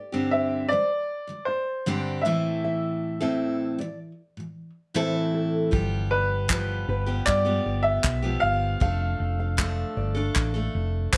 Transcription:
Already playing: G4 D5
0.12 G2 D3 G3 C4 D4 G4
0.31 C5 E5
0.69 G2 D3 C5 D5
0.73 G3
1.27 G2 D3 G3
1.45 C5 D5
1.86 G2 D3 G3 C4 D4 G4
2.22 A2 E5
2.26 E3 C4 E4 A4
2.64 E5
3.21 A2 E3 C4 E4 A4 E5
3.78 A2 E3 D5
4.37 A2 E3
4.94 A2 E3 C4 E4 A4 C5
5.34 A4
5.71 G1 F3 G3 B3 G4, kick
6.11 B4 D5
6.48 F3 G3 B3 G4 B4, kick, clap
6.88 G1 B4
7.06 F3 G3 B3 G4
7.26 G2 D5, kick, clap
7.45 F3 G3 B3 G4
7.66 G1 D5
7.83 E5
8.04 B1, kick, clap
8.22 F3 G3 B3 G4
8.40 G1 F5
8.80 F1 F3 A3 D4 A4 F5, kick
9.20 F1
9.39 F5
9.57 F3 A3 D4 A4, kick, clap
9.97 G1 D5
10.15 A3 D4 A4
10.36 A1, kick, clap
10.54 A3 D4 A4
10.75 F1
11.13 F1 C5, kick, clap

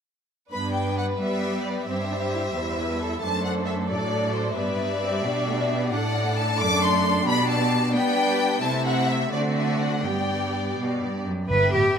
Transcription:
0.50 G2 B3 D4 B4 B5
0.74 G5
0.97 F#5
1.20 G3 B3 G4 E5
1.65 D5
1.87 G2 G3 C4 G4 C5 E5
2.11 D4
2.33 E4
2.55 E2 E4 C5
2.78 B4
3.00 A4
3.23 F#2 A3 D4 A4 C5 A5
3.45 F#5
3.67 E5
3.90 A2 F#3 D4 D5
4.35 C5
4.57 G2 G3 B3 B4 D5 E5
4.79 B3
5.02 C4
5.24 B2 G3 D4 G4
5.47 A3
5.70 B3
5.91 A2 D4 A4 D5 F#5
6.37 A5
6.59 F#2 A3 D5 D6
6.82 C6
7.26 B2 B3 G4 D5 B5
7.49 A5
7.94 G3 B3 D4 B4 D5 G5
8.63 C3 A3 C4 E4 E5 A5
8.86 F#5
9.09 E5
9.32 D3 A3 C4 F#4 D5
9.56 E5
9.80 F#5
10.04 G2 G3 B3 G4 D5 G5
10.77 B2
11.01 G2
11.26 F#2
11.49 G1 G2 B3 B4 E5 G5
11.73 A1 G4

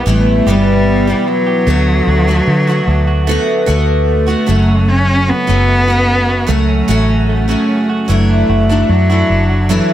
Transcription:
Already playing: B3 E4 G4
0.06 A1 E2 B2 E3 G3 A3 B3 E4
0.26 E4
0.46 G1 E2 B2 E3 G3 B3 E4 G4
0.67 E4
0.86 B3
1.07 E2 B2 E3 B3 E4 G4
1.27 F#3 E4
1.47 G4
1.67 D2 D3 A3 B3 F#4
1.88 D4
2.07 D2 F#4
2.28 D3 A3 B3 D4 F#4
2.47 D3 A3
2.67 A3 B3 F#4
2.87 D2 D4
3.07 F#4
3.27 D3 A3 B3 F#4
3.47 D4
3.66 D2 D3 A3 B3 F#4
3.87 D4
4.08 A3
4.27 D3 A3 B3 F#4
4.46 F#1 F#2 C#3 F#3 A3 C#4 F#4
4.68 F#4
4.88 A3 C#4
5.08 C#4
5.28 B3 F#4
5.47 F#1 F#2 C#3 F#3 A3 C#4 F#4
5.68 A3
5.88 F#3 A3 C#4 F#4
6.08 C#4
6.29 F#4
6.47 C#2 F#2 C#3 F#3 A3 C#4 F#4
6.69 C#4
6.88 A1 F#2 C#3 F#3 A3 C#4 F#4
7.09 C#4
7.29 A3
7.48 F#2 C#3 F#3 A3 C#4 F#4
7.69 C#4
7.89 F#4
8.08 F#1 E3 F#3 A3 D4 E4
8.29 D4
8.49 F#1 F#4
8.69 F#3 A3 D4 E4
8.89 F#2 F#3 A3
9.10 A3 D4 E4 F#4
9.30 F#1 D4
9.50 F#4
9.69 E3 F#3 A3 D4 E4
9.90 D4

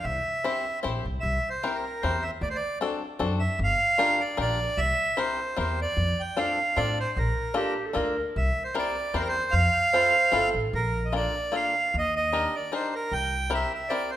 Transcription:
0.04 C2 E5
0.44 C4 E4 G4 C5
0.83 A#1 C4 E4 G4 C5
1.05 C2
1.20 C2 E5
1.50 C5
1.63 C4 E4 G4 A#4
1.75 A#4
2.02 E2 C4 E4 G4 A#4 C5
2.22 E5
2.41 D2 D5
2.50 C5
2.55 D5
2.81 C4 D4 F#4 A4
3.19 F#2 C4 D4 F#4 A4
3.40 E5
3.59 G1
3.64 F5
3.98 D4 F4 G4 A#4
4.21 D5
4.37 A#1 D4 F4 G4 A#4 D5
4.77 C2 E5
5.17 C4 E4 G4 A#4 C5
5.56 E2 C4 E4 G4 A#4 C5
5.82 D5
5.97 F2
6.20 G5
6.37 C4 D4 F4 A4 F5
6.76 A2 C4 D4 F4 A4 D5
7.00 C5
7.17 A#1 A#4
7.54 A#3 D4 F4 G4 A4
7.86 A4
7.93 D2 A#3 D4 F4 A4 A#4
8.36 C2 E5
8.64 C5
8.74 C4 E4 G4 A#4 D5
9.14 E2 C4 E4 G4 A#4 C5
9.20 A#4
9.28 C5
9.51 F2 F5
9.93 C4 E4 F4 A4 C5
10.32 G1 C4 E4 F4 A4
10.54 A1
10.73 A#1 A#4
11.05 D#5
11.12 A#3 D4 F4 A4 D5
11.52 A#3 D4 F4 A4 F5
11.94 D#2
11.98 D#5
12.16 D#5
12.32 D4 D#4 G4 A#4
12.56 D5
12.72 D4 D#4 G4 A#4 C5
12.95 A#4
13.12 C2 G5
13.50 C4 E4 G4 A#4
13.55 E5
13.74 E5
13.89 C4 E4 G4 A#4 D5
14.11 C5

